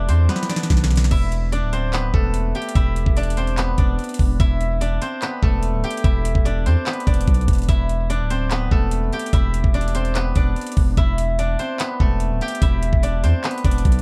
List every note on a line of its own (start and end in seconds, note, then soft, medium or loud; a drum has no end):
0.00 2.14 A3 medium
0.00 0.15 B3 medium
0.00 0.50 D4 medium
0.00 1.12 E4 medium
0.00 1.62 G4 medium
0.00 1.05 A4 medium
0.00 0.15 B4 medium
0.00 0.49 D5 medium
0.00 1.11 E5 loud
0.00 0.82 G5 medium
0.08 0.28 E2 loud
0.08 0.35 C4 medium
0.08 0.35 C5 medium
0.08 closed hi-hat medium
0.29 1.79 B3 medium
0.29 1.79 B4 medium
0.29 snare medium
0.29 closed hi-hat soft
0.36 snare medium
0.36 closed hi-hat medium
0.43 snare medium
0.43 closed hi-hat medium
0.49 1.53 D4 medium
0.49 1.52 D5 medium
0.49 snare medium
0.49 closed hi-hat medium
0.56 snare medium
0.56 closed hi-hat medium
0.63 snare medium
0.63 closed hi-hat medium
0.70 1.10 B1 loud
0.70 kick medium
0.70 snare medium
0.70 closed hi-hat medium
0.77 snare medium
0.77 closed hi-hat medium
0.84 snare medium
0.84 closed hi-hat medium
0.91 snare medium
0.91 closed hi-hat medium
0.91 open hi-hat medium
0.96 snare loud
0.96 closed hi-hat medium
0.97 closed hi-hat soft
1.01 snare medium
1.01 closed hi-hat medium
1.04 closed hi-hat soft
1.06 closed hi-hat soft
1.11 1.64 E1 loud
1.11 2.76 E4 medium
1.11 2.75 E5 loud
1.11 kick loud
1.11 closed hi-hat medium
1.11 crash loud
1.32 closed hi-hat medium
1.52 3.17 D4 medium
1.52 3.16 D5 medium
1.52 closed hi-hat medium
1.62 2.11 D1 loud
1.73 1.99 C4 medium
1.73 1.99 C5 medium
1.73 closed hi-hat medium
1.93 3.43 B3 medium
1.93 3.43 B4 loud
1.93 clap loud
1.93 closed hi-hat medium
2.14 2.53 E1 loud
2.14 5.43 A3 medium
2.14 4.33 A4 medium
2.14 kick loud
2.34 closed hi-hat medium
2.55 4.91 G4 medium
2.55 4.11 G5 medium
2.55 closed hi-hat soft
2.62 closed hi-hat medium
2.69 closed hi-hat medium
2.75 3.05 E1 loud
2.75 4.40 E4 medium
2.75 4.39 E5 loud
2.75 kick loud
2.75 closed hi-hat medium
2.96 closed hi-hat medium
3.06 3.75 E1 loud
3.06 kick medium
3.17 3.79 D4 medium
3.17 3.78 D5 medium
3.17 closed hi-hat medium
3.23 closed hi-hat medium
3.30 closed hi-hat medium
3.37 3.64 C4 medium
3.37 3.64 C5 medium
3.37 closed hi-hat medium
3.47 closed hi-hat soft
3.58 5.08 B3 medium
3.58 5.08 B4 medium
3.58 clap loud
3.58 closed hi-hat medium
3.78 3.98 E1 loud
3.78 4.81 D4 medium
3.78 4.81 D5 medium
3.78 kick loud
3.78 closed hi-hat medium
3.99 closed hi-hat soft
4.04 closed hi-hat medium
4.09 closed hi-hat medium
4.14 closed hi-hat medium
4.19 4.39 E1 loud
4.19 kick medium
4.19 open hi-hat medium
4.40 4.99 E1 loud
4.40 6.05 E4 medium
4.40 6.04 E5 loud
4.40 kick loud
4.40 closed hi-hat medium
4.61 closed hi-hat medium
4.81 6.46 D4 medium
4.81 6.45 D5 medium
4.81 closed hi-hat medium
5.02 5.28 C4 medium
5.02 5.28 C5 medium
5.02 closed hi-hat medium
5.22 6.72 B3 medium
5.22 6.72 B4 medium
5.22 clap loud
5.22 closed hi-hat medium
5.43 5.75 E1 loud
5.43 8.72 A3 medium
5.43 7.62 A4 medium
5.43 kick loud
5.63 closed hi-hat medium
5.74 5.83 D1 loud
5.84 8.19 G4 loud
5.84 7.40 G5 medium
5.84 closed hi-hat soft
5.91 closed hi-hat medium
5.97 closed hi-hat medium
6.04 6.34 E1 loud
6.04 7.69 E4 medium
6.04 7.68 E5 loud
6.04 kick loud
6.04 closed hi-hat medium
6.25 closed hi-hat medium
6.35 6.68 E1 loud
6.35 kick medium
6.45 7.07 D4 medium
6.45 7.06 D5 medium
6.45 closed hi-hat medium
6.66 6.76 E2 loud
6.66 6.92 C4 medium
6.66 6.92 C5 medium
6.66 closed hi-hat medium
6.86 8.36 B3 medium
6.86 8.36 B4 medium
6.86 clap loud
6.86 closed hi-hat soft
6.93 closed hi-hat medium
7.00 closed hi-hat medium
7.07 7.27 E1 loud
7.07 8.10 D4 medium
7.07 8.09 D5 medium
7.07 kick loud
7.07 closed hi-hat medium
7.14 closed hi-hat medium
7.21 closed hi-hat medium
7.28 7.47 B1 loud
7.28 kick loud
7.28 closed hi-hat medium
7.34 closed hi-hat medium
7.41 closed hi-hat medium
7.48 7.68 E1 loud
7.48 kick loud
7.48 closed hi-hat medium
7.48 open hi-hat medium
7.53 closed hi-hat medium
7.55 closed hi-hat medium
7.58 closed hi-hat medium
7.62 closed hi-hat soft
7.64 closed hi-hat soft
7.69 8.22 E1 loud
7.69 9.34 E4 medium
7.69 9.33 E5 loud
7.69 kick loud
7.69 closed hi-hat medium
7.89 closed hi-hat medium
8.10 9.75 D4 medium
8.10 9.74 D5 medium
8.10 closed hi-hat medium
8.20 8.69 D1 loud
8.30 8.57 C4 medium
8.30 8.57 C5 medium
8.30 closed hi-hat medium
8.51 10.01 B3 medium
8.51 10.01 B4 loud
8.51 clap loud
8.51 closed hi-hat medium
8.71 9.11 E1 loud
8.71 12.01 A3 medium
8.71 10.91 A4 medium
8.71 kick loud
8.91 closed hi-hat medium
9.13 11.48 G4 medium
9.13 10.69 G5 medium
9.13 closed hi-hat soft
9.19 closed hi-hat medium
9.26 closed hi-hat medium
9.33 9.63 E1 loud
9.33 10.98 E4 medium
9.33 10.97 E5 loud
9.33 kick loud
9.33 closed hi-hat medium
9.54 closed hi-hat medium
9.64 10.33 E1 loud
9.64 kick medium
9.74 10.36 D4 medium
9.74 10.36 D5 medium
9.74 closed hi-hat medium
9.81 closed hi-hat medium
9.88 closed hi-hat medium
9.95 10.21 C4 medium
9.95 10.21 C5 medium
9.95 closed hi-hat medium
10.05 closed hi-hat soft
10.15 11.65 B3 medium
10.15 11.65 B4 loud
10.15 clap loud
10.15 closed hi-hat medium
10.35 10.56 E1 loud
10.35 11.39 D4 medium
10.35 11.38 D5 medium
10.35 kick loud
10.35 closed hi-hat medium
10.56 closed hi-hat soft
10.61 closed hi-hat medium
10.67 closed hi-hat medium
10.72 closed hi-hat medium
10.77 10.97 E1 loud
10.77 kick loud
10.77 open hi-hat medium
10.97 11.57 E1 loud
10.97 12.62 E4 medium
10.97 12.62 E5 loud
10.97 kick loud
10.97 closed hi-hat medium
11.18 closed hi-hat medium
11.39 13.03 D4 medium
11.39 13.02 D5 medium
11.39 closed hi-hat medium
11.59 11.86 C4 medium
11.59 11.86 C5 medium
11.59 closed hi-hat medium
11.80 13.30 B3 medium
11.80 13.30 B4 medium
11.80 clap loud
11.80 closed hi-hat medium
12.00 12.32 E1 loud
12.00 14.02 A3 medium
12.00 14.02 A4 medium
12.00 kick loud
12.20 closed hi-hat medium
12.31 12.41 D1 loud
12.41 14.02 G4 loud
12.41 13.98 G5 medium
12.41 closed hi-hat soft
12.48 closed hi-hat medium
12.55 closed hi-hat medium
12.62 12.91 E1 loud
12.62 14.02 E4 medium
12.62 14.02 E5 loud
12.62 kick loud
12.62 closed hi-hat medium
12.83 closed hi-hat medium
12.93 13.25 E1 loud
12.93 kick medium
13.03 13.65 D4 medium
13.03 13.64 D5 medium
13.03 closed hi-hat medium
13.23 13.33 E2 loud
13.23 13.50 C4 medium
13.23 13.50 C5 medium
13.23 closed hi-hat medium
13.44 14.02 B3 medium
13.44 14.02 B4 medium
13.44 clap loud
13.44 closed hi-hat soft
13.51 closed hi-hat medium
13.58 closed hi-hat medium
13.64 13.84 E1 loud
13.64 14.02 D4 medium
13.64 14.02 D5 medium
13.64 kick loud
13.64 closed hi-hat medium
13.71 closed hi-hat medium
13.78 closed hi-hat medium
13.85 14.02 B1 loud
13.85 kick loud
13.85 closed hi-hat medium
13.92 closed hi-hat medium
13.99 closed hi-hat medium